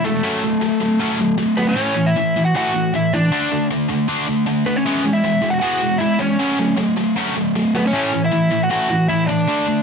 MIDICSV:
0, 0, Header, 1, 3, 480
1, 0, Start_track
1, 0, Key_signature, 3, "major"
1, 0, Tempo, 385109
1, 289, Time_signature, 4, 2, 24, 8
1, 12247, End_track
2, 0, Start_track
2, 0, Title_t, "Overdriven electric guitar"
2, 0, Program_c, 0, 29
2, 50, Note_on_c, 0, 57, 72
2, 60, Note_on_c, 0, 69, 78
2, 1681, Note_off_c, 0, 57, 0
2, 1683, Note_off_c, 0, 69, 0
2, 1959, Note_on_c, 0, 71, 84
2, 1970, Note_on_c, 0, 59, 64
2, 2081, Note_off_c, 0, 59, 0
2, 2088, Note_off_c, 0, 71, 0
2, 2102, Note_on_c, 0, 61, 77
2, 2104, Note_on_c, 0, 73, 80
2, 2543, Note_off_c, 0, 61, 0
2, 2571, Note_on_c, 0, 76, 102
2, 2575, Note_on_c, 0, 64, 72
2, 2589, Note_off_c, 0, 73, 0
2, 3016, Note_off_c, 0, 64, 0
2, 3049, Note_off_c, 0, 76, 0
2, 3054, Note_on_c, 0, 78, 105
2, 3066, Note_on_c, 0, 66, 78
2, 3163, Note_off_c, 0, 78, 0
2, 3170, Note_off_c, 0, 66, 0
2, 3199, Note_on_c, 0, 78, 101
2, 3205, Note_on_c, 0, 66, 87
2, 3635, Note_off_c, 0, 66, 0
2, 3677, Note_off_c, 0, 78, 0
2, 3682, Note_on_c, 0, 76, 99
2, 3697, Note_on_c, 0, 64, 82
2, 3898, Note_off_c, 0, 64, 0
2, 3901, Note_on_c, 0, 74, 86
2, 3911, Note_on_c, 0, 62, 72
2, 3912, Note_off_c, 0, 76, 0
2, 4566, Note_off_c, 0, 74, 0
2, 4571, Note_off_c, 0, 62, 0
2, 5809, Note_on_c, 0, 71, 79
2, 5817, Note_on_c, 0, 59, 65
2, 5925, Note_off_c, 0, 59, 0
2, 5936, Note_off_c, 0, 71, 0
2, 5936, Note_on_c, 0, 73, 95
2, 5957, Note_on_c, 0, 61, 67
2, 6391, Note_off_c, 0, 61, 0
2, 6395, Note_on_c, 0, 76, 102
2, 6406, Note_on_c, 0, 64, 81
2, 6428, Note_off_c, 0, 73, 0
2, 6854, Note_off_c, 0, 64, 0
2, 6859, Note_on_c, 0, 78, 101
2, 6897, Note_off_c, 0, 76, 0
2, 6903, Note_on_c, 0, 66, 78
2, 6962, Note_off_c, 0, 78, 0
2, 6977, Note_on_c, 0, 78, 109
2, 7003, Note_off_c, 0, 66, 0
2, 7018, Note_on_c, 0, 66, 86
2, 7439, Note_off_c, 0, 78, 0
2, 7454, Note_on_c, 0, 76, 101
2, 7461, Note_off_c, 0, 66, 0
2, 7489, Note_on_c, 0, 64, 78
2, 7713, Note_off_c, 0, 64, 0
2, 7719, Note_off_c, 0, 76, 0
2, 7719, Note_on_c, 0, 73, 80
2, 7750, Note_on_c, 0, 61, 66
2, 8410, Note_off_c, 0, 61, 0
2, 8444, Note_off_c, 0, 73, 0
2, 9664, Note_on_c, 0, 59, 61
2, 9682, Note_on_c, 0, 71, 79
2, 9769, Note_off_c, 0, 59, 0
2, 9779, Note_off_c, 0, 71, 0
2, 9789, Note_on_c, 0, 61, 69
2, 9814, Note_on_c, 0, 73, 97
2, 10226, Note_off_c, 0, 61, 0
2, 10239, Note_off_c, 0, 73, 0
2, 10275, Note_on_c, 0, 64, 79
2, 10289, Note_on_c, 0, 76, 104
2, 10709, Note_off_c, 0, 64, 0
2, 10758, Note_on_c, 0, 78, 103
2, 10762, Note_off_c, 0, 76, 0
2, 10765, Note_on_c, 0, 66, 76
2, 10837, Note_off_c, 0, 78, 0
2, 10841, Note_off_c, 0, 66, 0
2, 10854, Note_on_c, 0, 66, 83
2, 10855, Note_on_c, 0, 78, 97
2, 11298, Note_off_c, 0, 66, 0
2, 11322, Note_on_c, 0, 76, 101
2, 11328, Note_off_c, 0, 78, 0
2, 11333, Note_on_c, 0, 64, 80
2, 11541, Note_off_c, 0, 76, 0
2, 11546, Note_on_c, 0, 74, 83
2, 11553, Note_off_c, 0, 64, 0
2, 11563, Note_on_c, 0, 62, 65
2, 12226, Note_off_c, 0, 74, 0
2, 12234, Note_off_c, 0, 62, 0
2, 12247, End_track
3, 0, Start_track
3, 0, Title_t, "Distorted electric guitar"
3, 0, Program_c, 1, 30
3, 57, Note_on_c, 1, 56, 76
3, 58, Note_on_c, 1, 52, 78
3, 269, Note_off_c, 1, 56, 0
3, 270, Note_off_c, 1, 52, 0
3, 291, Note_on_c, 1, 54, 93
3, 298, Note_on_c, 1, 57, 105
3, 299, Note_on_c, 1, 61, 104
3, 516, Note_off_c, 1, 54, 0
3, 519, Note_off_c, 1, 57, 0
3, 520, Note_off_c, 1, 61, 0
3, 534, Note_on_c, 1, 54, 69
3, 546, Note_on_c, 1, 57, 70
3, 748, Note_off_c, 1, 54, 0
3, 753, Note_off_c, 1, 57, 0
3, 765, Note_on_c, 1, 54, 78
3, 771, Note_on_c, 1, 57, 93
3, 983, Note_off_c, 1, 54, 0
3, 986, Note_off_c, 1, 57, 0
3, 1003, Note_on_c, 1, 54, 68
3, 1017, Note_on_c, 1, 57, 90
3, 1222, Note_off_c, 1, 54, 0
3, 1229, Note_off_c, 1, 57, 0
3, 1242, Note_on_c, 1, 54, 94
3, 1251, Note_on_c, 1, 57, 104
3, 1253, Note_on_c, 1, 61, 95
3, 1467, Note_off_c, 1, 54, 0
3, 1470, Note_off_c, 1, 57, 0
3, 1476, Note_off_c, 1, 61, 0
3, 1482, Note_on_c, 1, 54, 77
3, 1485, Note_on_c, 1, 57, 78
3, 1702, Note_off_c, 1, 54, 0
3, 1703, Note_off_c, 1, 57, 0
3, 1719, Note_on_c, 1, 54, 71
3, 1726, Note_on_c, 1, 57, 82
3, 1940, Note_off_c, 1, 54, 0
3, 1944, Note_off_c, 1, 57, 0
3, 1958, Note_on_c, 1, 57, 82
3, 1963, Note_on_c, 1, 54, 71
3, 2180, Note_off_c, 1, 57, 0
3, 2182, Note_off_c, 1, 54, 0
3, 2193, Note_on_c, 1, 45, 88
3, 2201, Note_on_c, 1, 57, 96
3, 2203, Note_on_c, 1, 52, 92
3, 2423, Note_off_c, 1, 45, 0
3, 2428, Note_off_c, 1, 52, 0
3, 2430, Note_off_c, 1, 57, 0
3, 2438, Note_on_c, 1, 45, 74
3, 2443, Note_on_c, 1, 52, 77
3, 2660, Note_off_c, 1, 45, 0
3, 2662, Note_off_c, 1, 52, 0
3, 2692, Note_on_c, 1, 45, 72
3, 2696, Note_on_c, 1, 52, 82
3, 2906, Note_off_c, 1, 45, 0
3, 2909, Note_off_c, 1, 52, 0
3, 2941, Note_on_c, 1, 45, 72
3, 2946, Note_on_c, 1, 52, 87
3, 3151, Note_off_c, 1, 45, 0
3, 3154, Note_off_c, 1, 52, 0
3, 3173, Note_on_c, 1, 45, 88
3, 3182, Note_on_c, 1, 52, 102
3, 3184, Note_on_c, 1, 57, 93
3, 3397, Note_off_c, 1, 45, 0
3, 3398, Note_off_c, 1, 52, 0
3, 3402, Note_off_c, 1, 57, 0
3, 3413, Note_on_c, 1, 52, 77
3, 3416, Note_on_c, 1, 45, 71
3, 3627, Note_off_c, 1, 52, 0
3, 3629, Note_off_c, 1, 45, 0
3, 3660, Note_on_c, 1, 45, 85
3, 3664, Note_on_c, 1, 52, 84
3, 3871, Note_off_c, 1, 45, 0
3, 3873, Note_off_c, 1, 52, 0
3, 3907, Note_on_c, 1, 45, 68
3, 3910, Note_on_c, 1, 52, 80
3, 4114, Note_off_c, 1, 45, 0
3, 4116, Note_off_c, 1, 52, 0
3, 4137, Note_on_c, 1, 50, 85
3, 4140, Note_on_c, 1, 57, 99
3, 4145, Note_on_c, 1, 62, 108
3, 4359, Note_off_c, 1, 50, 0
3, 4361, Note_off_c, 1, 57, 0
3, 4363, Note_off_c, 1, 62, 0
3, 4384, Note_on_c, 1, 50, 70
3, 4384, Note_on_c, 1, 57, 73
3, 4593, Note_off_c, 1, 50, 0
3, 4593, Note_off_c, 1, 57, 0
3, 4620, Note_on_c, 1, 50, 79
3, 4627, Note_on_c, 1, 57, 80
3, 4831, Note_off_c, 1, 50, 0
3, 4835, Note_off_c, 1, 57, 0
3, 4845, Note_on_c, 1, 50, 75
3, 4856, Note_on_c, 1, 57, 76
3, 5064, Note_off_c, 1, 50, 0
3, 5069, Note_off_c, 1, 57, 0
3, 5087, Note_on_c, 1, 50, 89
3, 5091, Note_on_c, 1, 57, 93
3, 5098, Note_on_c, 1, 62, 97
3, 5314, Note_off_c, 1, 50, 0
3, 5316, Note_off_c, 1, 57, 0
3, 5320, Note_off_c, 1, 62, 0
3, 5332, Note_on_c, 1, 50, 78
3, 5335, Note_on_c, 1, 57, 78
3, 5547, Note_off_c, 1, 50, 0
3, 5548, Note_off_c, 1, 57, 0
3, 5565, Note_on_c, 1, 50, 80
3, 5575, Note_on_c, 1, 57, 87
3, 5783, Note_off_c, 1, 50, 0
3, 5788, Note_off_c, 1, 57, 0
3, 5813, Note_on_c, 1, 57, 78
3, 5814, Note_on_c, 1, 50, 67
3, 6028, Note_off_c, 1, 50, 0
3, 6028, Note_off_c, 1, 57, 0
3, 6056, Note_on_c, 1, 52, 94
3, 6064, Note_on_c, 1, 59, 98
3, 6066, Note_on_c, 1, 56, 91
3, 6266, Note_off_c, 1, 52, 0
3, 6267, Note_off_c, 1, 56, 0
3, 6281, Note_on_c, 1, 52, 64
3, 6282, Note_on_c, 1, 56, 86
3, 6283, Note_off_c, 1, 59, 0
3, 6502, Note_off_c, 1, 52, 0
3, 6502, Note_off_c, 1, 56, 0
3, 6530, Note_on_c, 1, 52, 75
3, 6537, Note_on_c, 1, 56, 86
3, 6740, Note_off_c, 1, 52, 0
3, 6750, Note_off_c, 1, 56, 0
3, 6755, Note_on_c, 1, 52, 83
3, 6763, Note_on_c, 1, 56, 77
3, 6978, Note_off_c, 1, 52, 0
3, 6983, Note_off_c, 1, 56, 0
3, 7000, Note_on_c, 1, 52, 90
3, 7003, Note_on_c, 1, 56, 98
3, 7014, Note_on_c, 1, 59, 96
3, 7231, Note_off_c, 1, 52, 0
3, 7232, Note_off_c, 1, 56, 0
3, 7238, Note_off_c, 1, 59, 0
3, 7250, Note_on_c, 1, 52, 70
3, 7261, Note_on_c, 1, 56, 74
3, 7466, Note_off_c, 1, 52, 0
3, 7472, Note_off_c, 1, 56, 0
3, 7483, Note_on_c, 1, 52, 85
3, 7489, Note_on_c, 1, 56, 95
3, 7700, Note_off_c, 1, 56, 0
3, 7703, Note_off_c, 1, 52, 0
3, 7715, Note_on_c, 1, 56, 80
3, 7716, Note_on_c, 1, 52, 69
3, 7939, Note_off_c, 1, 52, 0
3, 7939, Note_off_c, 1, 56, 0
3, 7970, Note_on_c, 1, 54, 86
3, 7973, Note_on_c, 1, 57, 91
3, 7978, Note_on_c, 1, 61, 106
3, 8196, Note_off_c, 1, 54, 0
3, 8197, Note_off_c, 1, 57, 0
3, 8199, Note_off_c, 1, 61, 0
3, 8213, Note_on_c, 1, 57, 82
3, 8215, Note_on_c, 1, 54, 70
3, 8425, Note_off_c, 1, 54, 0
3, 8428, Note_off_c, 1, 57, 0
3, 8440, Note_on_c, 1, 54, 78
3, 8450, Note_on_c, 1, 57, 85
3, 8661, Note_off_c, 1, 54, 0
3, 8666, Note_off_c, 1, 57, 0
3, 8687, Note_on_c, 1, 54, 77
3, 8692, Note_on_c, 1, 57, 85
3, 8904, Note_off_c, 1, 54, 0
3, 8907, Note_off_c, 1, 57, 0
3, 8929, Note_on_c, 1, 54, 92
3, 8940, Note_on_c, 1, 57, 98
3, 8945, Note_on_c, 1, 61, 93
3, 9155, Note_off_c, 1, 54, 0
3, 9160, Note_off_c, 1, 57, 0
3, 9163, Note_off_c, 1, 61, 0
3, 9173, Note_on_c, 1, 54, 76
3, 9181, Note_on_c, 1, 57, 82
3, 9387, Note_off_c, 1, 54, 0
3, 9391, Note_off_c, 1, 57, 0
3, 9417, Note_on_c, 1, 57, 81
3, 9418, Note_on_c, 1, 54, 74
3, 9629, Note_off_c, 1, 57, 0
3, 9630, Note_off_c, 1, 54, 0
3, 9657, Note_on_c, 1, 54, 74
3, 9665, Note_on_c, 1, 57, 74
3, 9869, Note_off_c, 1, 54, 0
3, 9873, Note_off_c, 1, 57, 0
3, 9888, Note_on_c, 1, 45, 84
3, 9894, Note_on_c, 1, 52, 93
3, 9902, Note_on_c, 1, 57, 101
3, 10114, Note_off_c, 1, 45, 0
3, 10117, Note_off_c, 1, 52, 0
3, 10121, Note_off_c, 1, 57, 0
3, 10136, Note_on_c, 1, 45, 71
3, 10139, Note_on_c, 1, 52, 81
3, 10348, Note_off_c, 1, 45, 0
3, 10350, Note_off_c, 1, 52, 0
3, 10363, Note_on_c, 1, 45, 75
3, 10371, Note_on_c, 1, 52, 89
3, 10582, Note_off_c, 1, 45, 0
3, 10586, Note_off_c, 1, 52, 0
3, 10601, Note_on_c, 1, 45, 71
3, 10609, Note_on_c, 1, 52, 88
3, 10821, Note_off_c, 1, 45, 0
3, 10825, Note_off_c, 1, 52, 0
3, 10839, Note_on_c, 1, 45, 94
3, 10844, Note_on_c, 1, 52, 91
3, 10849, Note_on_c, 1, 57, 101
3, 11069, Note_off_c, 1, 45, 0
3, 11071, Note_off_c, 1, 52, 0
3, 11074, Note_off_c, 1, 57, 0
3, 11083, Note_on_c, 1, 45, 70
3, 11090, Note_on_c, 1, 52, 85
3, 11301, Note_off_c, 1, 45, 0
3, 11305, Note_off_c, 1, 52, 0
3, 11331, Note_on_c, 1, 45, 78
3, 11334, Note_on_c, 1, 52, 85
3, 11545, Note_off_c, 1, 45, 0
3, 11547, Note_off_c, 1, 52, 0
3, 11577, Note_on_c, 1, 45, 70
3, 11582, Note_on_c, 1, 52, 75
3, 11788, Note_off_c, 1, 45, 0
3, 11791, Note_off_c, 1, 52, 0
3, 11810, Note_on_c, 1, 50, 90
3, 11812, Note_on_c, 1, 57, 99
3, 11819, Note_on_c, 1, 62, 102
3, 12028, Note_off_c, 1, 50, 0
3, 12035, Note_off_c, 1, 57, 0
3, 12038, Note_off_c, 1, 62, 0
3, 12043, Note_on_c, 1, 50, 69
3, 12051, Note_on_c, 1, 57, 84
3, 12247, Note_off_c, 1, 50, 0
3, 12247, Note_off_c, 1, 57, 0
3, 12247, End_track
0, 0, End_of_file